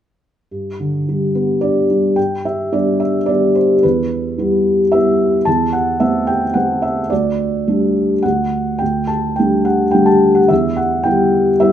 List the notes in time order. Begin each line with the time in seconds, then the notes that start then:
0.51 G2
0.80 D3
1.09 G3
1.35 B3
1.61 D4 D5
1.90 G3
2.16 G2 G5
2.45 E5
2.72 G3 B3 D4 D5
3.00 E5
3.26 G3 B3 D4 D5
3.55 C5
3.83 E2 B4
4.38 G3 B3 E4
4.92 G3 B3 E4 E5
5.45 E2 A5
5.73 F#5
6.00 A3 B3 C4 E5
6.27 G5
6.54 A3 B3 C4 F#5
6.82 E5
7.10 D2 D5
7.67 G3 A3 D4
8.23 D2 F#5
8.79 D2 G5
9.07 A5
9.36 G3 A3 D4 G5
9.65 F#5
9.91 G3 A3 G5
9.95 D4
10.06 A5
10.35 F#5
10.48 E2 E5
10.77 F#5
11.03 G3 B3 E4 G5
11.60 G3 B3 E4 E5